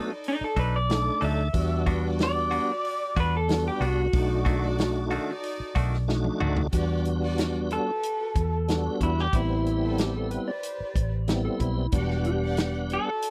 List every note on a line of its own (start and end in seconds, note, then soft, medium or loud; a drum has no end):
0.00 0.12 F#3 medium
0.00 0.11 A3 medium
0.00 0.11 B3 medium
0.00 0.12 D4 medium
0.00 0.11 D#4 medium
0.00 0.12 D#4 medium
0.00 0.12 F#4 medium
0.00 0.11 A4 medium
0.08 0.73 D#4 medium
0.08 0.73 A4 medium
0.08 0.74 D5 medium
0.24 open hi-hat medium
0.28 0.42 D#4 medium
0.41 0.58 A4 medium
0.41 muted fingered electric bass stroke soft
0.56 1.08 B1 loud
0.56 0.77 F#3 medium
0.56 0.77 D4 medium
0.56 0.77 D#4 medium
0.56 0.76 A4 medium
0.56 0.74 B4 medium
0.56 kick medium
0.56 open hi-hat soft
0.76 1.22 D5 loud
0.89 1.48 A3 medium
0.89 1.48 D4 medium
0.89 1.48 D#4 medium
0.89 1.48 A4 medium
0.89 snare loud
0.89 open hi-hat medium
1.21 1.48 D2 medium
1.21 1.42 F#3 medium
1.21 1.42 D4 medium
1.21 1.42 D#4 medium
1.21 1.41 A4 medium
1.21 1.86 E5 loud
1.21 open hi-hat medium
1.53 2.58 E2 loud
1.53 2.71 G3 medium
1.53 2.72 B3 medium
1.53 2.72 D4 medium
1.53 2.72 F#4 medium
1.53 1.79 F#4 medium
1.53 1.80 G4 medium
1.53 1.80 D5 medium
1.53 kick loud
1.53 open hi-hat medium
1.86 2.07 G3 medium
1.86 2.07 B3 medium
1.86 2.07 D4 medium
1.86 2.06 F#4 medium
1.86 kick medium
1.86 open hi-hat soft
2.05 2.36 G3 medium
2.05 2.37 F#4 medium
2.05 2.37 D5 medium
2.19 snare loud
2.19 open hi-hat medium
2.23 3.16 D5 loud
2.51 2.72 G3 medium
2.51 2.72 B3 medium
2.51 2.71 D4 medium
2.51 2.71 F#4 medium
2.51 open hi-hat medium
2.67 3.33 F#4 medium
2.67 3.33 G4 medium
2.67 3.33 D5 medium
2.85 open hi-hat medium
3.17 3.68 E2 loud
3.17 3.37 G3 medium
3.17 3.37 B3 medium
3.17 3.37 D4 medium
3.17 3.36 F#4 medium
3.17 3.34 B4 loud
3.17 kick medium
3.17 open hi-hat medium
3.37 3.67 A4 loud
3.48 4.07 G3 medium
3.48 4.07 B3 medium
3.48 4.07 D4 medium
3.48 4.08 F#4 medium
3.48 snare loud
3.48 open hi-hat medium
3.68 3.85 G4 loud
3.80 4.07 C2 medium
3.80 4.02 G3 medium
3.80 4.02 B3 medium
3.80 4.01 D4 medium
3.80 4.01 F#4 medium
3.80 open hi-hat medium
3.85 5.74 F#4 loud
4.13 5.17 B1 loud
4.13 5.31 A3 medium
4.13 5.31 D4 medium
4.13 4.38 D#4 medium
4.13 5.32 D#4 medium
4.13 5.32 F#4 medium
4.13 4.38 A4 medium
4.13 4.39 D5 medium
4.13 kick loud
4.13 open hi-hat medium
4.45 4.67 D#3 medium
4.45 4.66 A3 medium
4.45 4.66 D4 medium
4.45 4.66 F#4 medium
4.45 kick medium
4.45 open hi-hat soft
4.61 4.95 F#4 medium
4.61 4.95 A4 medium
4.61 4.95 D5 loud
4.78 snare loud
4.78 open hi-hat medium
5.11 5.32 D#3 medium
5.11 5.32 A3 medium
5.11 5.31 D4 medium
5.11 5.31 F#4 medium
5.11 open hi-hat medium
5.27 5.93 D#4 medium
5.27 5.93 A4 medium
5.27 5.93 D5 medium
5.43 open hi-hat medium
5.60 muted fingered electric bass stroke soft
5.75 6.28 B1 loud
5.75 5.97 D#3 medium
5.75 5.96 A3 medium
5.75 5.96 D4 medium
5.75 5.96 F#4 medium
5.75 kick loud
5.75 open hi-hat medium
5.93 snare soft
6.08 6.67 A3 loud
6.08 6.67 D4 medium
6.08 6.67 D#4 medium
6.08 6.67 F#4 loud
6.08 snare medium
6.24 high tom medium
6.40 6.67 D2 medium
6.40 6.62 D#3 medium
6.40 6.61 A3 medium
6.40 6.61 D4 medium
6.40 6.61 F#4 medium
6.40 mid tom loud
6.57 floor tom medium
6.72 7.77 E2 loud
6.72 7.91 G3 medium
6.72 7.91 B3 medium
6.72 7.91 D4 medium
6.72 6.97 F#4 medium
6.72 7.91 F#4 medium
6.72 6.97 G4 medium
6.72 6.98 D5 medium
6.72 kick loud
6.72 closed hi-hat medium
7.05 closed hi-hat medium
7.22 7.55 G3 medium
7.22 7.55 F#4 medium
7.22 7.55 D5 medium
7.38 snare loud
7.38 closed hi-hat medium
7.71 8.98 A4 medium
7.71 closed hi-hat medium
7.88 8.53 F#4 medium
7.88 8.53 G4 medium
7.88 8.53 B4 medium
8.03 closed hi-hat medium
8.36 8.88 E2 medium
8.36 kick medium
8.36 closed hi-hat medium
8.68 9.27 G3 medium
8.68 9.27 B3 medium
8.68 9.27 D4 medium
8.68 9.28 F#4 medium
8.68 snare loud
8.68 closed hi-hat medium
9.01 9.27 E2 loud
9.01 9.20 E4 medium
9.01 kick medium
9.01 closed hi-hat medium
9.19 9.35 G4 medium
9.19 snare soft
9.32 10.37 A1 medium
9.32 10.51 G3 medium
9.32 10.51 B3 medium
9.32 10.51 C4 medium
9.32 10.51 E4 medium
9.32 9.97 E4 medium
9.32 9.58 G4 medium
9.32 9.57 B4 medium
9.32 9.58 C5 medium
9.32 kick loud
9.32 closed hi-hat medium
9.66 closed hi-hat medium
9.81 10.14 G4 medium
9.81 10.15 A4 medium
9.81 10.14 B4 medium
9.98 10.15 G4 medium
9.98 snare loud
9.98 closed hi-hat medium
10.16 10.31 A4 medium
10.31 10.47 B4 medium
10.31 closed hi-hat medium
10.47 11.12 G4 medium
10.47 11.12 B4 medium
10.47 11.13 C5 medium
10.47 11.42 D5 medium
10.63 closed hi-hat medium
10.80 muted fingered electric bass stroke soft
10.95 11.47 A1 medium
10.95 kick medium
10.95 closed hi-hat medium
11.28 11.87 G3 medium
11.28 11.87 B3 medium
11.28 11.87 C4 medium
11.28 11.87 E4 loud
11.28 snare loud
11.28 closed hi-hat medium
11.45 11.60 A4 medium
11.60 11.86 B1 medium
11.60 11.92 E4 medium
11.60 kick medium
11.60 closed hi-hat medium
11.92 12.96 E1 loud
11.92 13.10 G3 medium
11.92 13.10 B3 medium
11.92 13.10 D4 medium
11.92 12.18 F#4 medium
11.92 12.24 G4 medium
11.92 12.18 G4 medium
11.92 12.18 D5 medium
11.92 13.10 F#5 medium
11.92 kick loud
11.92 closed hi-hat medium
12.11 snare soft
12.24 12.73 G4 medium
12.24 closed hi-hat medium
12.43 12.75 G4 medium
12.43 12.76 D5 medium
12.43 12.75 F#5 medium
12.57 snare loud
12.57 closed hi-hat medium
12.90 13.30 A4 medium
12.90 closed hi-hat medium
13.08 13.30 F#4 medium
13.08 13.30 G4 medium
13.08 13.30 D5 medium
13.22 closed hi-hat medium